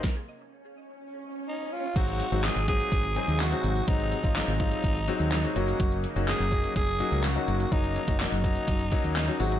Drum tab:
CC |----------------|x---------------|----------------|----------------|
HH |----------------|xxxxxxxxxxxxxxxx|xxxxxxxxxxxxxxxx|xxxxxxxxxxxxxxxx|
CP |----------------|----x-------x---|----x-------x---|----x-------x---|
SD |o---------------|----o-------o---|----o-------o---|----o-------o---|
BD |o---------------|o-----o-o-------|o--o--o-o-------|o-----o-o-------|

CC |----------------|
HH |xxxxxxxxxxxxxxox|
CP |----x-------x---|
SD |----o-------o---|
BD |o--o--o-o-o-----|